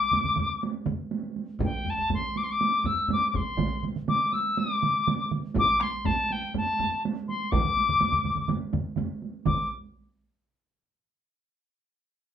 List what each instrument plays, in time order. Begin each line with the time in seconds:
Already playing: piccolo D6
0.00 taiko high
0.11 taiko low-mid, taiko mid, taiko high
0.24 taiko low-mid, taiko mid, taiko high
0.36 taiko low-mid, taiko mid, taiko high
0.50 taiko high
0.63 taiko high
0.76 taiko high
0.86 taiko low-mid, taiko mid, taiko high
1.01 taiko high
1.11 taiko high
1.23 taiko high
1.36 taiko high
1.49 taiko high
1.60 taiko, taiko low-mid, taiko high
1.64 piccolo G5
1.73 taiko high
1.85 taiko low-mid, taiko high
1.90 piccolo A5
1.98 taiko low-mid, taiko high
2.09 taiko, taiko low-mid, taiko high
2.14 piccolo C6
2.25 taiko high
2.36 piccolo D6, taiko high
2.44 piccolo C6
2.48 piccolo D6, taiko high
2.61 taiko high
2.74 taiko high
2.84 piccolo E6, taiko low-mid, taiko high
2.99 taiko high
3.08 taiko low-mid, taiko high
3.13 piccolo D6
3.30 piccolo D6, taiko low-mid
3.34 piccolo C6, taiko, taiko high
3.49 taiko high
3.58 taiko, taiko mid, taiko high
3.72 taiko high
3.83 taiko mid, taiko high
3.96 taiko mid, taiko high
4.08 piccolo D6, taiko mid, taiko high
4.33 piccolo E6, taiko high
4.45 taiko high
4.57 piccolo D6, taiko high
4.71 taiko high
4.82 taiko mid, taiko high
4.96 taiko high
5.07 taiko mid, taiko high
5.31 taiko mid, taiko high
5.43 taiko high
5.54 taiko, taiko low-mid, taiko high
5.59 piccolo D6
5.68 taiko high
5.81 piccolo C6, taiko rim, taiko high
5.93 taiko high
6.04 piccolo A5, taiko, taiko low-mid, taiko high
6.18 taiko high
6.31 piccolo G5, taiko high
6.43 taiko high
6.54 piccolo A5, taiko low-mid, taiko high
6.68 taiko high
6.79 taiko low-mid, taiko high
6.94 taiko high
7.05 taiko high
7.28 piccolo C6, taiko high
7.41 taiko high
7.51 piccolo D6, taiko, taiko low-mid, taiko mid, taiko high
7.64 taiko low-mid, taiko mid, taiko high
7.77 taiko high
7.88 taiko low-mid, taiko mid, taiko high
8.00 taiko low-mid, taiko mid, taiko high
8.12 taiko low-mid, taiko mid, taiko high
8.24 taiko low-mid, taiko mid, taiko high
8.35 taiko low-mid, taiko mid, taiko high
8.48 taiko low-mid, taiko mid, taiko high
8.61 taiko high
8.73 taiko low-mid, taiko mid, taiko high
8.96 taiko low-mid, taiko mid, taiko high
9.22 taiko high
9.34 taiko high
9.45 piccolo D6, taiko, taiko low-mid, taiko mid, taiko high